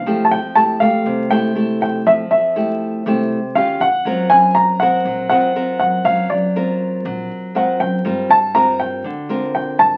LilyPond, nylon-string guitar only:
\new Staff \with { instrumentName = "Nylon-string guitar" } { \time 4/4 \key f \major \tempo 4 = 120 << { <a e' g'>8 r8 <a e' g'>8 <a g'>4 <a e' g'>8 <a e' g'>4~ | <a e' g'>8 r8 <a e' g'>4 <a e' g'>8 r8 <des' f' g'>8 r8 | <c' eis' ais'>4. <c' ais'>4 <c' eis' ais'>8 <c' eis' ais'>4~ | <c' eis' ais'>4 <c' eis' ais'>2 <c' eis' ais'>4 |
<c' f' bes'>8 r8 <c' f' bes'>4 r8 <c' f' bes'>4. | } \\ { f2 c2 | f2 c4 r4 | fis2 fis2 | fis2 fis2 |
g2 d2 | } >> }